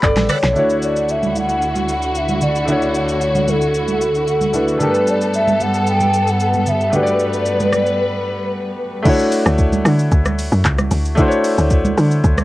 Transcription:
0.00 0.16 G1 loud
0.00 0.50 A3 medium
0.00 0.51 D4 medium
0.00 0.52 F#4 medium
0.00 0.53 G4 medium
0.00 0.58 A4 medium
0.00 0.32 A4 medium
0.00 0.57 B4 medium
0.00 0.52 D5 medium
0.00 0.58 B5 medium
0.00 kick medium
0.00 clap loud
0.00 shaker medium
0.16 0.29 A1 medium
0.16 snare medium
0.16 high conga medium
0.16 shaker medium
0.29 0.38 A4 medium
0.29 0.38 B4 medium
0.29 0.85 C#5 loud
0.29 0.38 F#5 medium
0.29 cross-stick medium
0.29 open hi-hat medium
0.29 low conga medium
0.29 shaker loud
0.43 0.55 B1 loud
0.43 snare medium
0.43 shaker soft
0.53 4.77 D2 medium
0.53 4.77 D3 medium
0.53 2.63 A3 medium
0.53 2.64 D4 medium
0.53 4.77 E4 medium
0.53 2.64 E4 medium
0.53 4.77 F#4 medium
0.53 low conga medium
0.53 shaker medium
0.58 2.65 F#4 medium
0.58 2.66 C#5 medium
0.70 shaker medium
0.82 1.12 D5 medium
0.82 shaker medium
0.96 shaker medium
1.09 1.38 E5 medium
1.09 shaker medium
1.23 high conga medium
1.23 shaker soft
1.35 1.89 F#5 loud
1.35 high conga medium
1.35 shaker medium
1.49 shaker soft
1.62 shaker medium
1.75 high conga medium
1.75 shaker medium
1.89 2.18 F#5 medium
1.89 shaker loud
2.02 shaker medium
2.15 2.42 E5 loud
2.15 shaker medium
2.29 high conga medium
2.29 shaker medium
2.41 2.97 D5 loud
2.41 low conga medium
2.41 shaker medium
2.56 shaker soft
2.65 4.49 A3 medium
2.65 4.50 D4 medium
2.65 4.51 E4 medium
2.65 low conga medium
2.65 shaker medium
2.70 4.51 F#4 medium
2.70 4.52 C#5 medium
2.82 shaker medium
2.95 3.51 C#5 loud
2.95 shaker medium
3.09 shaker medium
3.21 shaker medium
3.35 high conga medium
3.35 shaker soft
3.48 4.28 A4 loud
3.48 high conga medium
3.48 shaker medium
3.62 shaker soft
3.74 shaker medium
3.88 high conga medium
3.88 shaker medium
4.01 shaker medium
4.15 shaker medium
4.28 4.57 A4 medium
4.28 shaker medium
4.41 high conga medium
4.41 shaker medium
4.53 4.76 A3 soft
4.53 4.78 D4 soft
4.53 4.81 E4 soft
4.53 4.81 F#4 soft
4.53 4.79 A4 medium
4.53 5.10 B4 loud
4.53 low conga medium
4.53 shaker medium
4.68 shaker soft
4.78 9.02 G2 medium
4.78 9.02 G3 medium
4.78 6.88 A3 medium
4.78 9.02 B3 medium
4.78 6.88 D4 medium
4.78 6.91 A4 medium
4.78 6.89 A4 medium
4.78 low conga medium
4.78 shaker medium
4.83 6.90 G4 medium
4.83 4.89 A#4 medium
4.91 6.94 B4 medium
4.91 shaker medium
5.07 5.35 D5 loud
5.07 shaker medium
5.21 shaker medium
5.34 5.63 E5 loud
5.34 shaker medium
5.48 high conga medium
5.48 shaker soft
5.60 5.88 F#5 loud
5.60 high conga medium
5.60 shaker medium
5.74 shaker soft
5.87 6.31 G5 loud
5.87 shaker medium
6.00 high conga medium
6.00 shaker medium
6.14 shaker medium
6.27 6.69 F#5 loud
6.27 shaker medium
6.40 shaker medium
6.54 high conga medium
6.54 shaker medium
6.66 6.96 E5 loud
6.66 low conga medium
6.66 shaker loud
6.81 shaker soft
6.90 9.00 A3 medium
6.90 9.01 D4 medium
6.90 9.02 F#4 medium
6.90 9.03 B4 medium
6.90 low conga medium
6.90 shaker medium
6.95 9.02 G4 medium
6.95 7.02 B4 medium
6.95 8.80 D5 loud
7.03 9.06 D5 medium
7.03 shaker medium
7.19 shaker medium
7.33 shaker medium
7.46 shaker medium
7.60 high conga medium
7.60 shaker soft
7.73 cross-stick loud
7.73 high conga medium
7.73 shaker medium
7.86 shaker soft
9.02 11.12 A3 medium
9.02 11.13 D4 medium
9.02 11.14 E4 medium
9.02 kick loud
9.02 crash loud
9.02 low conga medium
9.02 shaker medium
9.08 11.15 F#4 medium
9.08 11.16 C#5 medium
9.19 shaker medium
9.32 open hi-hat medium
9.32 shaker loud
9.46 9.83 D2 loud
9.46 cross-stick medium
9.46 shaker medium
9.58 kick loud
9.58 shaker medium
9.72 high conga medium
9.72 shaker medium
9.85 10.10 D3 loud
9.85 cross-stick loud
9.85 open hi-hat soft
9.85 high conga medium
9.85 shaker medium
9.99 shaker medium
10.12 10.50 D2 loud
10.12 kick loud
10.12 shaker medium
10.25 cross-stick medium
10.25 high conga medium
10.25 shaker medium
10.39 open hi-hat medium
10.39 shaker loud
10.52 10.64 F#2 loud
10.52 shaker medium
10.65 10.90 C#2 loud
10.65 kick medium
10.65 clap loud
10.65 shaker medium
10.78 cross-stick medium
10.78 high conga medium
10.78 shaker medium
10.91 11.16 D2 medium
10.91 open hi-hat medium
10.91 low conga medium
10.91 shaker loud
11.05 shaker soft
11.15 12.44 A3 medium
11.15 12.44 D4 medium
11.15 12.44 E4 medium
11.15 kick loud
11.15 low conga medium
11.15 shaker medium
11.20 12.44 F#4 medium
11.20 11.26 C5 medium
11.28 12.44 C#5 medium
11.28 shaker medium
11.44 open hi-hat medium
11.44 shaker loud
11.58 11.95 D2 loud
11.58 shaker medium
11.70 kick loud
11.70 shaker medium
11.85 high conga medium
11.85 shaker medium
11.97 12.23 D3 loud
11.97 open hi-hat soft
11.97 high conga medium
11.97 shaker medium
12.11 shaker medium
12.24 12.44 D2 loud
12.24 kick loud
12.24 shaker medium
12.38 cross-stick medium
12.38 high conga medium
12.38 shaker medium

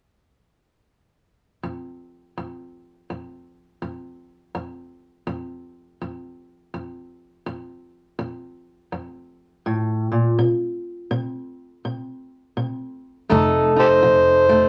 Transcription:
1.63 2.31 F2 medium
2.38 3.05 F2 medium
3.10 3.77 F2 medium
3.82 4.50 F2 medium
4.55 5.23 F2 medium
5.27 5.95 F2 medium
6.02 6.69 F2 medium
6.74 7.42 F2 medium
7.46 8.14 F2 medium
8.19 8.87 F2 medium
8.92 9.60 F2 medium
9.66 10.11 A2 medium
10.12 10.38 A#2 soft
10.39 11.07 C3 medium
11.11 11.79 C3 medium
11.85 12.53 C3 medium
12.57 13.25 C3 medium
13.29 14.62 F1 medium
13.29 13.98 F2 medium
13.29 14.49 A3 medium
13.29 13.76 D#4 medium
13.29 14.69 A4 medium
13.76 14.69 D#4 soft
13.76 13.86 G4 medium
13.76 13.88 A4 medium
13.76 14.69 C5 medium
14.03 14.69 F3 medium
14.49 14.69 A3 medium

